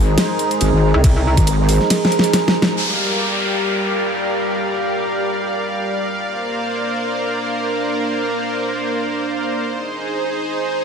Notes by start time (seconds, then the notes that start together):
Already playing: G#1 G#3 D#4 G#4 A#4 C5 A#5
0.18 snare, closed hi-hat, ride
0.39 closed hi-hat
0.51 closed hi-hat
0.61 G#1, closed hi-hat, ride
0.73 G#1
0.94 C2
1.04 kick, closed hi-hat, ride
1.37 G#1, kick, closed hi-hat
1.47 closed hi-hat, ride
1.69 open hi-hat
1.81 snare
1.90 snare, closed hi-hat, ride
2.05 snare
2.12 closed hi-hat
2.19 snare
2.24 closed hi-hat
2.33 snare, closed hi-hat, ride
2.48 snare
2.62 snare
2.77 G3 G4 A#4 D5 F5, downlifter
3.22 F5
6.22 A#3 D4 A#4 C5
6.69 C5
9.67 D#4 G#4
10.11 G#5